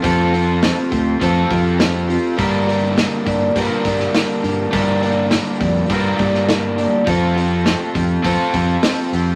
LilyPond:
<<
  \new Staff \with { instrumentName = "Twelve-string acoustic guitar" } { \time 4/4 \key g \minor \tempo 4 = 102 <f a c' f' g'>8 <c' f' g'>8 <a c' f' g'>8 <c' f' g'>8 <f a c' f' g'>8 <c' f' g'>8 <a c' f' g'>8 <c' f' g'>8 | <g, f g bes d' g'>8 <g bes d' g'>8 <g bes d' g'>8 <g bes d' g'>8 <g, f g bes d' g'>8 <g bes d' g'>8 <g bes d' g'>8 <g bes d' g'>8 | <g, f g bes d' g'>8 <g bes d' g'>8 <g bes d' g'>8 <g bes d' g'>8 <g, f g bes d' g'>8 <g bes d' g'>8 <g bes d' g'>8 <g bes d' g'>8 | <f a c' f' g'>8 <c' f' g'>8 <a c' f' g'>8 <c' f' g'>8 <f a c' f' g'>8 <c' f' g'>8 <a c' f' g'>8 <c' f' g'>8 | }
  \new Staff \with { instrumentName = "Overdriven electric guitar" } { \time 4/4 \key g \minor <f c' f' a'>2 <f c' f' a'>2 | <g, d g bes d' bes'>2 <g, d g bes d' bes'>2 | <g, d g bes d' bes'>2 <g, d g bes d' bes'>2 | <f c' f' a'>2 <f c' f' a'>2 | }
  \new Staff \with { instrumentName = "Fingered electric bass" } { \clef bass \time 4/4 \key g \minor f,4. d,8 f,8 f,4. | g,4. g,8 g,16 r16 g,8 r8 g,8 | g,4. f,8 g,8 g,4. | f,4. f,8 f,16 r16 f,8 r8 f,8 | }
  \new DrumStaff \with { instrumentName = "Drums" } \drummode { \time 4/4 <hho bd>8 hho8 <hho sn>8 <hho bd>8 <hho bd>8 <hho bd>8 <hho sn>8 hho8 | <hho bd>8 hho8 <hho sn>8 <hho bd>8 <hho bd>8 <hho bd>16 sn16 <hho sn>8 hho8 | <hho bd>8 hho8 <hho sn>8 <hho bd>8 <hho bd>8 <hho bd>16 sn16 <hho sn>8 hho8 | <hho bd>8 hho8 <hho sn>8 <hho bd>8 <hho bd>8 <hho bd>8 <hho sn>8 hho8 | }
>>